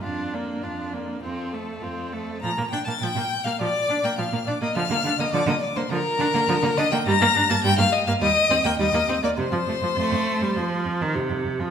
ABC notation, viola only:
X:1
M:4/4
L:1/16
Q:1/4=102
K:Bb
V:1 name="Viola"
D2 B,2 D2 B,2 C2 A,2 C2 A,2 | F, B, D B, F, B, z B, F, z D B, F, B, D B, | F, B, D B, F, B, z B, F, z D B, F, B, D B, | G, B, D B, G, B, z B, G, z C B, G, B, C B, |
C, F, A, F, A,3 G, F,3 E, C,3 F, |]